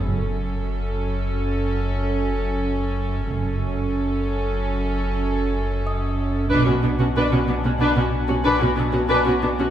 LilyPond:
<<
  \new Staff \with { instrumentName = "Music box" } { \time 5/4 \key fis \dorian \tempo 4 = 92 r1 r4 | r1 <dis'' dis'''>4~ | <dis'' dis'''>2 r4. e'''4. | }
  \new Staff \with { instrumentName = "Violin section" } { \time 5/4 \key fis \dorian r1 r4 | r1 r4 | <fis'' gis'' a''>1~ <fis'' gis'' a''>4 | }
  \new Staff \with { instrumentName = "Viola section" } { \time 5/4 \key fis \dorian <cis' a'>1~ <cis' a'>4 | <cis' a'>1~ <cis' a'>4 | <d' b'>16 <cis' fis'>16 <b d'>16 <cis' fis'>16 <d' b'>16 <cis' fis'>16 <b d'>16 <cis' fis'>16 <d' b'>16 <cis' fis'>16 r16 <cis' fis'>16 <d' b'>16 <cis' fis'>16 <b d'>16 <cis' fis'>16 <d' b'>16 <cis' fis'>16 <b d'>16 <cis' fis'>16 | }
  \new Staff \with { instrumentName = "Cello section" } { \clef bass \time 5/4 \key fis \dorian fis,1~ fis,4 | fis,1~ fis,4 | b,16 b,16 b,16 b,16 b,16 b,16 b,16 b,16 b,16 b,16 r16 b,16 b,16 b,16 b,16 b,16 b,16 b,16 b,16 b,16 | }
  \new Staff \with { instrumentName = "Double bass section" } { \clef bass \time 5/4 \key fis \dorian fis,,4 r1 | fis,,4 r1 | b,,16 r1 r8. | }
  \new Staff \with { instrumentName = "Sub bass" } { \clef bass \time 5/4 \key fis \dorian fis,,1~ fis,,4 | fis,,1~ fis,,4 | b,,1~ b,,4 | }
>>